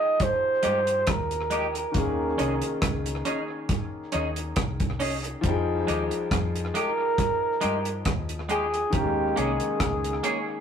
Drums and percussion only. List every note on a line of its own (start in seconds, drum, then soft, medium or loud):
0.20 kick loud
0.20 closed hi-hat medium
0.63 closed hi-hat medium
0.87 closed hi-hat medium
1.07 kick loud
1.07 cross-stick loud
1.07 closed hi-hat loud
1.31 closed hi-hat medium
1.51 closed hi-hat medium
1.75 closed hi-hat medium
1.94 kick loud
1.94 closed hi-hat medium
2.39 closed hi-hat medium
2.62 closed hi-hat medium
2.82 kick loud
2.82 cross-stick loud
2.82 closed hi-hat medium
3.06 closed hi-hat medium
3.25 closed hi-hat medium
3.69 kick loud
3.69 closed hi-hat medium
4.12 closed hi-hat medium
4.36 closed hi-hat medium
4.56 kick loud
4.56 cross-stick loud
4.56 closed hi-hat medium
4.80 kick medium
4.80 closed hi-hat medium
5.00 open hi-hat medium
5.24 closed hi-hat medium
5.44 kick loud
5.44 closed hi-hat medium
5.88 closed hi-hat medium
6.11 closed hi-hat medium
6.31 kick loud
6.31 cross-stick loud
6.31 closed hi-hat medium
6.56 closed hi-hat medium
6.75 closed hi-hat medium
7.18 kick loud
7.18 closed hi-hat medium
7.61 closed hi-hat medium
7.85 closed hi-hat medium
8.05 kick loud
8.05 cross-stick loud
8.05 closed hi-hat medium
8.29 closed hi-hat medium
8.49 closed hi-hat medium
8.74 closed hi-hat medium
8.93 kick loud
8.93 closed hi-hat medium
9.37 closed hi-hat medium
9.60 closed hi-hat medium
9.80 kick loud
9.80 cross-stick loud
9.80 closed hi-hat medium
10.04 closed hi-hat medium
10.24 closed hi-hat medium